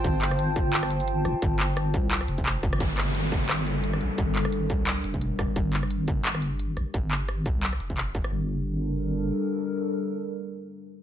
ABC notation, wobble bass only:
X:1
M:4/4
L:1/16
Q:"Swing 16ths" 1/4=174
K:Gm
V:1 name="Wobble bass" clef=bass
G,,,12- G,,,2 G,,, z | G,,,6 C,,4 F,,,4- F,,, G,,, | G,,,12- G,,,2 B,,, z | G,,,6 C,,4 F,,,4- F,,, z |
G,,,12- G,,,2 B,,, z | G,,,6 C,,4 F,,,4- F,,, z | G,,,12 z4 | z16 |]